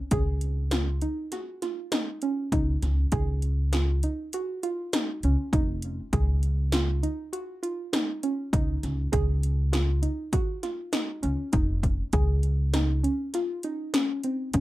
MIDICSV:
0, 0, Header, 1, 4, 480
1, 0, Start_track
1, 0, Tempo, 601202
1, 95, Time_signature, 5, 2, 24, 8
1, 11660, End_track
2, 0, Start_track
2, 0, Title_t, "Synth arpeggio sound"
2, 0, Program_c, 0, 84
2, 103, Note_on_c, 0, 68, 97
2, 490, Note_off_c, 0, 68, 0
2, 572, Note_on_c, 0, 65, 88
2, 769, Note_off_c, 0, 65, 0
2, 814, Note_on_c, 0, 63, 67
2, 1009, Note_off_c, 0, 63, 0
2, 1057, Note_on_c, 0, 66, 83
2, 1252, Note_off_c, 0, 66, 0
2, 1295, Note_on_c, 0, 65, 80
2, 1490, Note_off_c, 0, 65, 0
2, 1534, Note_on_c, 0, 63, 83
2, 1730, Note_off_c, 0, 63, 0
2, 1777, Note_on_c, 0, 61, 67
2, 1971, Note_off_c, 0, 61, 0
2, 2019, Note_on_c, 0, 63, 77
2, 2408, Note_off_c, 0, 63, 0
2, 2497, Note_on_c, 0, 68, 93
2, 2886, Note_off_c, 0, 68, 0
2, 2977, Note_on_c, 0, 65, 77
2, 3171, Note_off_c, 0, 65, 0
2, 3222, Note_on_c, 0, 63, 65
2, 3414, Note_off_c, 0, 63, 0
2, 3465, Note_on_c, 0, 66, 80
2, 3656, Note_off_c, 0, 66, 0
2, 3698, Note_on_c, 0, 65, 79
2, 3892, Note_off_c, 0, 65, 0
2, 3939, Note_on_c, 0, 63, 87
2, 4132, Note_off_c, 0, 63, 0
2, 4186, Note_on_c, 0, 61, 76
2, 4376, Note_off_c, 0, 61, 0
2, 4424, Note_on_c, 0, 63, 77
2, 4810, Note_off_c, 0, 63, 0
2, 4898, Note_on_c, 0, 68, 91
2, 5287, Note_off_c, 0, 68, 0
2, 5376, Note_on_c, 0, 65, 83
2, 5570, Note_off_c, 0, 65, 0
2, 5613, Note_on_c, 0, 63, 71
2, 5808, Note_off_c, 0, 63, 0
2, 5849, Note_on_c, 0, 66, 80
2, 6046, Note_off_c, 0, 66, 0
2, 6089, Note_on_c, 0, 65, 77
2, 6286, Note_off_c, 0, 65, 0
2, 6330, Note_on_c, 0, 63, 81
2, 6526, Note_off_c, 0, 63, 0
2, 6574, Note_on_c, 0, 61, 75
2, 6769, Note_off_c, 0, 61, 0
2, 6809, Note_on_c, 0, 63, 79
2, 7201, Note_off_c, 0, 63, 0
2, 7284, Note_on_c, 0, 68, 91
2, 7677, Note_off_c, 0, 68, 0
2, 7765, Note_on_c, 0, 65, 86
2, 7963, Note_off_c, 0, 65, 0
2, 8004, Note_on_c, 0, 63, 72
2, 8202, Note_off_c, 0, 63, 0
2, 8251, Note_on_c, 0, 66, 81
2, 8447, Note_off_c, 0, 66, 0
2, 8488, Note_on_c, 0, 65, 74
2, 8685, Note_off_c, 0, 65, 0
2, 8724, Note_on_c, 0, 63, 84
2, 8922, Note_off_c, 0, 63, 0
2, 8963, Note_on_c, 0, 61, 72
2, 9161, Note_off_c, 0, 61, 0
2, 9201, Note_on_c, 0, 63, 73
2, 9595, Note_off_c, 0, 63, 0
2, 9686, Note_on_c, 0, 68, 90
2, 10078, Note_off_c, 0, 68, 0
2, 10168, Note_on_c, 0, 63, 84
2, 10364, Note_off_c, 0, 63, 0
2, 10407, Note_on_c, 0, 61, 70
2, 10604, Note_off_c, 0, 61, 0
2, 10655, Note_on_c, 0, 65, 90
2, 10848, Note_off_c, 0, 65, 0
2, 10893, Note_on_c, 0, 63, 74
2, 11087, Note_off_c, 0, 63, 0
2, 11130, Note_on_c, 0, 61, 88
2, 11326, Note_off_c, 0, 61, 0
2, 11371, Note_on_c, 0, 60, 70
2, 11566, Note_off_c, 0, 60, 0
2, 11614, Note_on_c, 0, 61, 89
2, 11660, Note_off_c, 0, 61, 0
2, 11660, End_track
3, 0, Start_track
3, 0, Title_t, "Upright bass"
3, 0, Program_c, 1, 32
3, 92, Note_on_c, 1, 37, 75
3, 821, Note_off_c, 1, 37, 0
3, 2012, Note_on_c, 1, 37, 94
3, 2195, Note_off_c, 1, 37, 0
3, 2257, Note_on_c, 1, 37, 78
3, 2438, Note_off_c, 1, 37, 0
3, 2493, Note_on_c, 1, 37, 94
3, 3222, Note_off_c, 1, 37, 0
3, 4179, Note_on_c, 1, 37, 79
3, 4269, Note_off_c, 1, 37, 0
3, 4415, Note_on_c, 1, 29, 85
3, 4779, Note_off_c, 1, 29, 0
3, 4894, Note_on_c, 1, 37, 89
3, 5622, Note_off_c, 1, 37, 0
3, 6812, Note_on_c, 1, 37, 80
3, 6994, Note_off_c, 1, 37, 0
3, 7053, Note_on_c, 1, 37, 75
3, 7235, Note_off_c, 1, 37, 0
3, 7293, Note_on_c, 1, 37, 96
3, 8020, Note_off_c, 1, 37, 0
3, 8972, Note_on_c, 1, 37, 82
3, 9063, Note_off_c, 1, 37, 0
3, 9209, Note_on_c, 1, 29, 82
3, 9574, Note_off_c, 1, 29, 0
3, 9685, Note_on_c, 1, 37, 86
3, 10415, Note_off_c, 1, 37, 0
3, 11609, Note_on_c, 1, 37, 81
3, 11660, Note_off_c, 1, 37, 0
3, 11660, End_track
4, 0, Start_track
4, 0, Title_t, "Drums"
4, 89, Note_on_c, 9, 42, 90
4, 91, Note_on_c, 9, 36, 117
4, 169, Note_off_c, 9, 42, 0
4, 171, Note_off_c, 9, 36, 0
4, 329, Note_on_c, 9, 42, 58
4, 409, Note_off_c, 9, 42, 0
4, 569, Note_on_c, 9, 38, 95
4, 569, Note_on_c, 9, 42, 63
4, 649, Note_off_c, 9, 38, 0
4, 649, Note_off_c, 9, 42, 0
4, 810, Note_on_c, 9, 42, 58
4, 890, Note_off_c, 9, 42, 0
4, 1052, Note_on_c, 9, 38, 30
4, 1052, Note_on_c, 9, 42, 70
4, 1132, Note_off_c, 9, 38, 0
4, 1132, Note_off_c, 9, 42, 0
4, 1295, Note_on_c, 9, 38, 34
4, 1295, Note_on_c, 9, 42, 53
4, 1375, Note_off_c, 9, 38, 0
4, 1375, Note_off_c, 9, 42, 0
4, 1532, Note_on_c, 9, 38, 96
4, 1532, Note_on_c, 9, 42, 72
4, 1611, Note_off_c, 9, 38, 0
4, 1611, Note_off_c, 9, 42, 0
4, 1770, Note_on_c, 9, 42, 55
4, 1849, Note_off_c, 9, 42, 0
4, 2013, Note_on_c, 9, 36, 100
4, 2014, Note_on_c, 9, 42, 77
4, 2093, Note_off_c, 9, 36, 0
4, 2094, Note_off_c, 9, 42, 0
4, 2255, Note_on_c, 9, 38, 32
4, 2255, Note_on_c, 9, 42, 59
4, 2335, Note_off_c, 9, 38, 0
4, 2335, Note_off_c, 9, 42, 0
4, 2489, Note_on_c, 9, 42, 82
4, 2492, Note_on_c, 9, 36, 101
4, 2569, Note_off_c, 9, 42, 0
4, 2572, Note_off_c, 9, 36, 0
4, 2733, Note_on_c, 9, 42, 59
4, 2813, Note_off_c, 9, 42, 0
4, 2976, Note_on_c, 9, 38, 100
4, 2976, Note_on_c, 9, 42, 77
4, 3055, Note_off_c, 9, 38, 0
4, 3055, Note_off_c, 9, 42, 0
4, 3217, Note_on_c, 9, 42, 61
4, 3297, Note_off_c, 9, 42, 0
4, 3458, Note_on_c, 9, 42, 88
4, 3538, Note_off_c, 9, 42, 0
4, 3699, Note_on_c, 9, 42, 57
4, 3779, Note_off_c, 9, 42, 0
4, 3938, Note_on_c, 9, 38, 103
4, 3938, Note_on_c, 9, 42, 91
4, 4018, Note_off_c, 9, 38, 0
4, 4018, Note_off_c, 9, 42, 0
4, 4178, Note_on_c, 9, 42, 55
4, 4258, Note_off_c, 9, 42, 0
4, 4413, Note_on_c, 9, 36, 110
4, 4417, Note_on_c, 9, 42, 77
4, 4493, Note_off_c, 9, 36, 0
4, 4497, Note_off_c, 9, 42, 0
4, 4650, Note_on_c, 9, 42, 61
4, 4730, Note_off_c, 9, 42, 0
4, 4893, Note_on_c, 9, 36, 111
4, 4893, Note_on_c, 9, 42, 83
4, 4973, Note_off_c, 9, 36, 0
4, 4973, Note_off_c, 9, 42, 0
4, 5132, Note_on_c, 9, 42, 48
4, 5212, Note_off_c, 9, 42, 0
4, 5368, Note_on_c, 9, 38, 96
4, 5368, Note_on_c, 9, 42, 70
4, 5448, Note_off_c, 9, 38, 0
4, 5448, Note_off_c, 9, 42, 0
4, 5616, Note_on_c, 9, 42, 54
4, 5696, Note_off_c, 9, 42, 0
4, 5854, Note_on_c, 9, 42, 71
4, 5934, Note_off_c, 9, 42, 0
4, 6095, Note_on_c, 9, 42, 57
4, 6175, Note_off_c, 9, 42, 0
4, 6333, Note_on_c, 9, 38, 105
4, 6333, Note_on_c, 9, 42, 79
4, 6413, Note_off_c, 9, 38, 0
4, 6413, Note_off_c, 9, 42, 0
4, 6573, Note_on_c, 9, 42, 58
4, 6652, Note_off_c, 9, 42, 0
4, 6811, Note_on_c, 9, 36, 109
4, 6814, Note_on_c, 9, 42, 83
4, 6890, Note_off_c, 9, 36, 0
4, 6894, Note_off_c, 9, 42, 0
4, 7053, Note_on_c, 9, 38, 31
4, 7053, Note_on_c, 9, 42, 54
4, 7133, Note_off_c, 9, 38, 0
4, 7133, Note_off_c, 9, 42, 0
4, 7288, Note_on_c, 9, 42, 86
4, 7289, Note_on_c, 9, 36, 108
4, 7368, Note_off_c, 9, 42, 0
4, 7369, Note_off_c, 9, 36, 0
4, 7532, Note_on_c, 9, 42, 63
4, 7612, Note_off_c, 9, 42, 0
4, 7770, Note_on_c, 9, 38, 106
4, 7770, Note_on_c, 9, 42, 68
4, 7849, Note_off_c, 9, 38, 0
4, 7849, Note_off_c, 9, 42, 0
4, 8006, Note_on_c, 9, 42, 60
4, 8086, Note_off_c, 9, 42, 0
4, 8245, Note_on_c, 9, 36, 96
4, 8246, Note_on_c, 9, 42, 85
4, 8325, Note_off_c, 9, 36, 0
4, 8326, Note_off_c, 9, 42, 0
4, 8488, Note_on_c, 9, 38, 33
4, 8488, Note_on_c, 9, 42, 58
4, 8568, Note_off_c, 9, 38, 0
4, 8568, Note_off_c, 9, 42, 0
4, 8724, Note_on_c, 9, 38, 111
4, 8724, Note_on_c, 9, 42, 81
4, 8804, Note_off_c, 9, 38, 0
4, 8804, Note_off_c, 9, 42, 0
4, 8967, Note_on_c, 9, 42, 54
4, 9046, Note_off_c, 9, 42, 0
4, 9204, Note_on_c, 9, 42, 77
4, 9207, Note_on_c, 9, 36, 107
4, 9283, Note_off_c, 9, 42, 0
4, 9287, Note_off_c, 9, 36, 0
4, 9447, Note_on_c, 9, 36, 70
4, 9449, Note_on_c, 9, 42, 58
4, 9527, Note_off_c, 9, 36, 0
4, 9529, Note_off_c, 9, 42, 0
4, 9683, Note_on_c, 9, 42, 78
4, 9687, Note_on_c, 9, 36, 109
4, 9763, Note_off_c, 9, 42, 0
4, 9767, Note_off_c, 9, 36, 0
4, 9925, Note_on_c, 9, 42, 52
4, 10005, Note_off_c, 9, 42, 0
4, 10168, Note_on_c, 9, 38, 88
4, 10168, Note_on_c, 9, 42, 70
4, 10248, Note_off_c, 9, 38, 0
4, 10248, Note_off_c, 9, 42, 0
4, 10414, Note_on_c, 9, 42, 59
4, 10493, Note_off_c, 9, 42, 0
4, 10649, Note_on_c, 9, 38, 33
4, 10649, Note_on_c, 9, 42, 78
4, 10729, Note_off_c, 9, 38, 0
4, 10729, Note_off_c, 9, 42, 0
4, 10884, Note_on_c, 9, 42, 54
4, 10964, Note_off_c, 9, 42, 0
4, 11128, Note_on_c, 9, 38, 115
4, 11128, Note_on_c, 9, 42, 86
4, 11208, Note_off_c, 9, 38, 0
4, 11208, Note_off_c, 9, 42, 0
4, 11365, Note_on_c, 9, 42, 56
4, 11445, Note_off_c, 9, 42, 0
4, 11605, Note_on_c, 9, 42, 84
4, 11608, Note_on_c, 9, 36, 104
4, 11660, Note_off_c, 9, 36, 0
4, 11660, Note_off_c, 9, 42, 0
4, 11660, End_track
0, 0, End_of_file